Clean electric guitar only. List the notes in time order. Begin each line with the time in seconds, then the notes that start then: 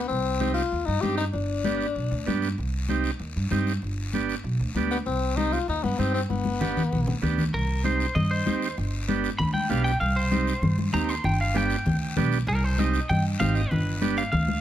7.54 A#4
7.85 C5
8.15 D#5
8.31 C5
9.38 B5
9.54 G5
9.70 F5
9.84 G5
10.00 F5
10.16 C5
10.94 A#5
11.09 C6
11.25 G5
11.41 F5
11.57 G5
12.48 A#4
12.64 C5
12.79 D#5
13.09 G5
13.40 F5
13.55 D#5
13.70 B4
14.18 F5
14.32 F5